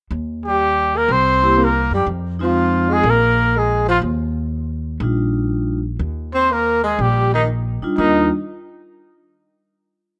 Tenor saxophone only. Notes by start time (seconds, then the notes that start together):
0.47 G3
0.95 A#3
1.10 C4
1.58 A#3
1.93 G3
2.42 F3
2.89 G#3
3.06 A#3
3.56 G#3
3.88 F3
6.34 C4
6.51 A#3
6.83 G#3
7.01 G3
7.35 D#3
7.99 D#3